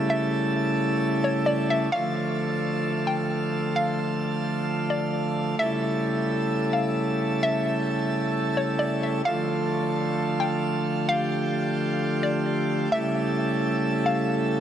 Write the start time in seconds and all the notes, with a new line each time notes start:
Already playing: C#3 G3 A3 E4 A4
0.10 E5
1.24 C#5
1.46 D5
1.70 E5
1.92 D3 F3 A3 F4 A4 F5
3.07 G5
3.76 F5
4.90 D5
5.59 C#3 G3 E4 A4 E5
6.73 F5
7.43 E5
8.57 C#5
8.79 D5
9.03 E5
9.25 D3 F3 A3 F4 A4 F5
10.40 G5
11.09 G4 F5
12.23 D5
12.92 C#3 G3 E4 A4 E5
14.06 F5